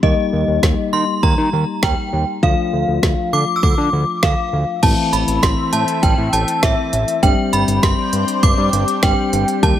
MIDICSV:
0, 0, Header, 1, 6, 480
1, 0, Start_track
1, 0, Tempo, 600000
1, 24, Time_signature, 4, 2, 24, 8
1, 7836, End_track
2, 0, Start_track
2, 0, Title_t, "Synth bell"
2, 0, Program_c, 0, 98
2, 23, Note_on_c, 0, 75, 82
2, 744, Note_on_c, 0, 84, 85
2, 765, Note_off_c, 0, 75, 0
2, 985, Note_on_c, 0, 82, 91
2, 991, Note_off_c, 0, 84, 0
2, 1465, Note_on_c, 0, 79, 89
2, 1479, Note_off_c, 0, 82, 0
2, 1799, Note_off_c, 0, 79, 0
2, 1945, Note_on_c, 0, 77, 94
2, 2665, Note_on_c, 0, 86, 97
2, 2686, Note_off_c, 0, 77, 0
2, 2848, Note_on_c, 0, 88, 71
2, 2854, Note_off_c, 0, 86, 0
2, 2904, Note_off_c, 0, 88, 0
2, 2904, Note_on_c, 0, 86, 91
2, 3383, Note_on_c, 0, 77, 79
2, 3592, Note_off_c, 0, 86, 0
2, 3861, Note_on_c, 0, 81, 96
2, 3878, Note_off_c, 0, 77, 0
2, 4086, Note_off_c, 0, 81, 0
2, 4102, Note_on_c, 0, 83, 88
2, 4341, Note_on_c, 0, 84, 96
2, 4350, Note_off_c, 0, 83, 0
2, 4580, Note_on_c, 0, 81, 91
2, 4590, Note_off_c, 0, 84, 0
2, 4822, Note_on_c, 0, 79, 89
2, 4829, Note_off_c, 0, 81, 0
2, 5062, Note_on_c, 0, 81, 89
2, 5070, Note_off_c, 0, 79, 0
2, 5286, Note_off_c, 0, 81, 0
2, 5302, Note_on_c, 0, 76, 89
2, 5782, Note_on_c, 0, 79, 100
2, 5797, Note_off_c, 0, 76, 0
2, 6006, Note_off_c, 0, 79, 0
2, 6023, Note_on_c, 0, 83, 93
2, 6264, Note_on_c, 0, 84, 101
2, 6270, Note_off_c, 0, 83, 0
2, 6744, Note_on_c, 0, 86, 106
2, 6758, Note_off_c, 0, 84, 0
2, 7222, Note_on_c, 0, 79, 97
2, 7238, Note_off_c, 0, 86, 0
2, 7671, Note_off_c, 0, 79, 0
2, 7703, Note_on_c, 0, 81, 104
2, 7836, Note_off_c, 0, 81, 0
2, 7836, End_track
3, 0, Start_track
3, 0, Title_t, "Analog synth pad"
3, 0, Program_c, 1, 89
3, 3865, Note_on_c, 1, 69, 68
3, 3866, Note_on_c, 1, 60, 72
3, 3866, Note_on_c, 1, 64, 68
3, 3866, Note_on_c, 1, 76, 82
3, 5765, Note_off_c, 1, 69, 0
3, 5766, Note_off_c, 1, 60, 0
3, 5766, Note_off_c, 1, 64, 0
3, 5766, Note_off_c, 1, 76, 0
3, 5785, Note_on_c, 1, 72, 70
3, 5786, Note_on_c, 1, 62, 75
3, 5786, Note_on_c, 1, 67, 69
3, 5786, Note_on_c, 1, 79, 81
3, 7685, Note_off_c, 1, 62, 0
3, 7685, Note_off_c, 1, 72, 0
3, 7686, Note_off_c, 1, 79, 0
3, 7706, Note_on_c, 1, 63, 78
3, 7706, Note_on_c, 1, 70, 69
3, 7707, Note_on_c, 1, 79, 82
3, 7836, Note_off_c, 1, 63, 0
3, 7836, Note_off_c, 1, 67, 0
3, 7836, Note_off_c, 1, 70, 0
3, 7836, Note_off_c, 1, 79, 0
3, 7836, End_track
4, 0, Start_track
4, 0, Title_t, "Tine electric piano"
4, 0, Program_c, 2, 4
4, 23, Note_on_c, 2, 55, 66
4, 23, Note_on_c, 2, 58, 58
4, 24, Note_on_c, 2, 63, 59
4, 24, Note_on_c, 2, 67, 73
4, 1912, Note_off_c, 2, 55, 0
4, 1912, Note_off_c, 2, 58, 0
4, 1912, Note_off_c, 2, 63, 0
4, 1912, Note_off_c, 2, 67, 0
4, 1942, Note_on_c, 2, 53, 64
4, 1942, Note_on_c, 2, 57, 59
4, 1943, Note_on_c, 2, 62, 61
4, 1943, Note_on_c, 2, 65, 69
4, 3831, Note_off_c, 2, 53, 0
4, 3831, Note_off_c, 2, 57, 0
4, 3831, Note_off_c, 2, 62, 0
4, 3831, Note_off_c, 2, 65, 0
4, 3863, Note_on_c, 2, 64, 74
4, 3864, Note_on_c, 2, 52, 65
4, 3864, Note_on_c, 2, 57, 60
4, 3864, Note_on_c, 2, 60, 60
4, 5752, Note_off_c, 2, 52, 0
4, 5752, Note_off_c, 2, 57, 0
4, 5752, Note_off_c, 2, 60, 0
4, 5752, Note_off_c, 2, 64, 0
4, 5784, Note_on_c, 2, 60, 62
4, 5784, Note_on_c, 2, 62, 59
4, 5785, Note_on_c, 2, 55, 67
4, 5785, Note_on_c, 2, 67, 74
4, 7195, Note_off_c, 2, 60, 0
4, 7195, Note_off_c, 2, 62, 0
4, 7196, Note_off_c, 2, 55, 0
4, 7196, Note_off_c, 2, 67, 0
4, 7224, Note_on_c, 2, 55, 52
4, 7224, Note_on_c, 2, 60, 47
4, 7224, Note_on_c, 2, 62, 47
4, 7224, Note_on_c, 2, 67, 58
4, 7694, Note_off_c, 2, 55, 0
4, 7694, Note_off_c, 2, 67, 0
4, 7704, Note_off_c, 2, 60, 0
4, 7704, Note_off_c, 2, 62, 0
4, 7704, Note_on_c, 2, 55, 71
4, 7704, Note_on_c, 2, 58, 63
4, 7704, Note_on_c, 2, 63, 62
4, 7704, Note_on_c, 2, 67, 75
4, 7836, Note_off_c, 2, 55, 0
4, 7836, Note_off_c, 2, 58, 0
4, 7836, Note_off_c, 2, 63, 0
4, 7836, Note_off_c, 2, 67, 0
4, 7836, End_track
5, 0, Start_track
5, 0, Title_t, "Analog synth bass"
5, 0, Program_c, 3, 38
5, 23, Note_on_c, 3, 39, 111
5, 117, Note_off_c, 3, 39, 0
5, 264, Note_on_c, 3, 39, 107
5, 357, Note_off_c, 3, 39, 0
5, 384, Note_on_c, 3, 39, 92
5, 477, Note_off_c, 3, 39, 0
5, 503, Note_on_c, 3, 39, 99
5, 597, Note_off_c, 3, 39, 0
5, 744, Note_on_c, 3, 51, 92
5, 837, Note_off_c, 3, 51, 0
5, 985, Note_on_c, 3, 39, 106
5, 1077, Note_off_c, 3, 39, 0
5, 1104, Note_on_c, 3, 51, 101
5, 1197, Note_off_c, 3, 51, 0
5, 1224, Note_on_c, 3, 39, 92
5, 1317, Note_off_c, 3, 39, 0
5, 1464, Note_on_c, 3, 39, 100
5, 1557, Note_off_c, 3, 39, 0
5, 1703, Note_on_c, 3, 39, 99
5, 1797, Note_off_c, 3, 39, 0
5, 1943, Note_on_c, 3, 38, 106
5, 2037, Note_off_c, 3, 38, 0
5, 2183, Note_on_c, 3, 38, 97
5, 2277, Note_off_c, 3, 38, 0
5, 2304, Note_on_c, 3, 38, 99
5, 2397, Note_off_c, 3, 38, 0
5, 2423, Note_on_c, 3, 38, 95
5, 2517, Note_off_c, 3, 38, 0
5, 2663, Note_on_c, 3, 50, 96
5, 2757, Note_off_c, 3, 50, 0
5, 2905, Note_on_c, 3, 38, 96
5, 2998, Note_off_c, 3, 38, 0
5, 3023, Note_on_c, 3, 50, 99
5, 3116, Note_off_c, 3, 50, 0
5, 3143, Note_on_c, 3, 38, 94
5, 3237, Note_off_c, 3, 38, 0
5, 3384, Note_on_c, 3, 38, 99
5, 3477, Note_off_c, 3, 38, 0
5, 3624, Note_on_c, 3, 38, 97
5, 3717, Note_off_c, 3, 38, 0
5, 3863, Note_on_c, 3, 33, 105
5, 3956, Note_off_c, 3, 33, 0
5, 4103, Note_on_c, 3, 33, 96
5, 4197, Note_off_c, 3, 33, 0
5, 4223, Note_on_c, 3, 33, 94
5, 4317, Note_off_c, 3, 33, 0
5, 4343, Note_on_c, 3, 33, 103
5, 4437, Note_off_c, 3, 33, 0
5, 4583, Note_on_c, 3, 45, 95
5, 4677, Note_off_c, 3, 45, 0
5, 4825, Note_on_c, 3, 33, 109
5, 4918, Note_off_c, 3, 33, 0
5, 4943, Note_on_c, 3, 45, 92
5, 5037, Note_off_c, 3, 45, 0
5, 5065, Note_on_c, 3, 33, 99
5, 5158, Note_off_c, 3, 33, 0
5, 5304, Note_on_c, 3, 33, 104
5, 5397, Note_off_c, 3, 33, 0
5, 5545, Note_on_c, 3, 33, 101
5, 5638, Note_off_c, 3, 33, 0
5, 5784, Note_on_c, 3, 31, 110
5, 5877, Note_off_c, 3, 31, 0
5, 6025, Note_on_c, 3, 31, 94
5, 6118, Note_off_c, 3, 31, 0
5, 6145, Note_on_c, 3, 31, 97
5, 6238, Note_off_c, 3, 31, 0
5, 6264, Note_on_c, 3, 31, 103
5, 6357, Note_off_c, 3, 31, 0
5, 6504, Note_on_c, 3, 43, 95
5, 6597, Note_off_c, 3, 43, 0
5, 6745, Note_on_c, 3, 31, 104
5, 6838, Note_off_c, 3, 31, 0
5, 6864, Note_on_c, 3, 43, 104
5, 6957, Note_off_c, 3, 43, 0
5, 6984, Note_on_c, 3, 31, 100
5, 7077, Note_off_c, 3, 31, 0
5, 7224, Note_on_c, 3, 31, 103
5, 7317, Note_off_c, 3, 31, 0
5, 7464, Note_on_c, 3, 31, 110
5, 7557, Note_off_c, 3, 31, 0
5, 7704, Note_on_c, 3, 39, 118
5, 7797, Note_off_c, 3, 39, 0
5, 7836, End_track
6, 0, Start_track
6, 0, Title_t, "Drums"
6, 23, Note_on_c, 9, 36, 105
6, 103, Note_off_c, 9, 36, 0
6, 503, Note_on_c, 9, 36, 101
6, 505, Note_on_c, 9, 38, 107
6, 583, Note_off_c, 9, 36, 0
6, 585, Note_off_c, 9, 38, 0
6, 985, Note_on_c, 9, 36, 112
6, 1065, Note_off_c, 9, 36, 0
6, 1462, Note_on_c, 9, 38, 112
6, 1463, Note_on_c, 9, 36, 114
6, 1542, Note_off_c, 9, 38, 0
6, 1543, Note_off_c, 9, 36, 0
6, 1943, Note_on_c, 9, 36, 108
6, 2023, Note_off_c, 9, 36, 0
6, 2423, Note_on_c, 9, 36, 101
6, 2425, Note_on_c, 9, 38, 103
6, 2503, Note_off_c, 9, 36, 0
6, 2505, Note_off_c, 9, 38, 0
6, 2905, Note_on_c, 9, 36, 117
6, 2985, Note_off_c, 9, 36, 0
6, 3382, Note_on_c, 9, 38, 112
6, 3384, Note_on_c, 9, 36, 112
6, 3462, Note_off_c, 9, 38, 0
6, 3464, Note_off_c, 9, 36, 0
6, 3863, Note_on_c, 9, 36, 112
6, 3863, Note_on_c, 9, 42, 70
6, 3863, Note_on_c, 9, 49, 90
6, 3943, Note_off_c, 9, 36, 0
6, 3943, Note_off_c, 9, 42, 0
6, 3943, Note_off_c, 9, 49, 0
6, 4105, Note_on_c, 9, 42, 70
6, 4185, Note_off_c, 9, 42, 0
6, 4224, Note_on_c, 9, 42, 53
6, 4304, Note_off_c, 9, 42, 0
6, 4343, Note_on_c, 9, 36, 102
6, 4345, Note_on_c, 9, 38, 108
6, 4346, Note_on_c, 9, 42, 70
6, 4423, Note_off_c, 9, 36, 0
6, 4425, Note_off_c, 9, 38, 0
6, 4426, Note_off_c, 9, 42, 0
6, 4582, Note_on_c, 9, 42, 78
6, 4662, Note_off_c, 9, 42, 0
6, 4704, Note_on_c, 9, 42, 51
6, 4784, Note_off_c, 9, 42, 0
6, 4824, Note_on_c, 9, 42, 71
6, 4825, Note_on_c, 9, 36, 120
6, 4904, Note_off_c, 9, 42, 0
6, 4905, Note_off_c, 9, 36, 0
6, 5065, Note_on_c, 9, 42, 75
6, 5145, Note_off_c, 9, 42, 0
6, 5184, Note_on_c, 9, 42, 50
6, 5264, Note_off_c, 9, 42, 0
6, 5303, Note_on_c, 9, 38, 119
6, 5304, Note_on_c, 9, 36, 113
6, 5306, Note_on_c, 9, 42, 85
6, 5383, Note_off_c, 9, 38, 0
6, 5384, Note_off_c, 9, 36, 0
6, 5386, Note_off_c, 9, 42, 0
6, 5544, Note_on_c, 9, 42, 70
6, 5624, Note_off_c, 9, 42, 0
6, 5664, Note_on_c, 9, 42, 48
6, 5744, Note_off_c, 9, 42, 0
6, 5784, Note_on_c, 9, 36, 113
6, 5784, Note_on_c, 9, 42, 72
6, 5864, Note_off_c, 9, 36, 0
6, 5864, Note_off_c, 9, 42, 0
6, 6025, Note_on_c, 9, 42, 70
6, 6105, Note_off_c, 9, 42, 0
6, 6144, Note_on_c, 9, 42, 54
6, 6224, Note_off_c, 9, 42, 0
6, 6264, Note_on_c, 9, 36, 108
6, 6266, Note_on_c, 9, 38, 109
6, 6267, Note_on_c, 9, 42, 69
6, 6344, Note_off_c, 9, 36, 0
6, 6346, Note_off_c, 9, 38, 0
6, 6347, Note_off_c, 9, 42, 0
6, 6503, Note_on_c, 9, 42, 75
6, 6583, Note_off_c, 9, 42, 0
6, 6624, Note_on_c, 9, 42, 51
6, 6704, Note_off_c, 9, 42, 0
6, 6744, Note_on_c, 9, 42, 73
6, 6745, Note_on_c, 9, 36, 121
6, 6824, Note_off_c, 9, 42, 0
6, 6825, Note_off_c, 9, 36, 0
6, 6985, Note_on_c, 9, 42, 75
6, 7065, Note_off_c, 9, 42, 0
6, 7103, Note_on_c, 9, 42, 50
6, 7183, Note_off_c, 9, 42, 0
6, 7222, Note_on_c, 9, 38, 117
6, 7224, Note_on_c, 9, 36, 118
6, 7225, Note_on_c, 9, 42, 84
6, 7302, Note_off_c, 9, 38, 0
6, 7304, Note_off_c, 9, 36, 0
6, 7305, Note_off_c, 9, 42, 0
6, 7464, Note_on_c, 9, 42, 70
6, 7544, Note_off_c, 9, 42, 0
6, 7585, Note_on_c, 9, 42, 49
6, 7665, Note_off_c, 9, 42, 0
6, 7704, Note_on_c, 9, 36, 116
6, 7704, Note_on_c, 9, 42, 70
6, 7784, Note_off_c, 9, 36, 0
6, 7784, Note_off_c, 9, 42, 0
6, 7836, End_track
0, 0, End_of_file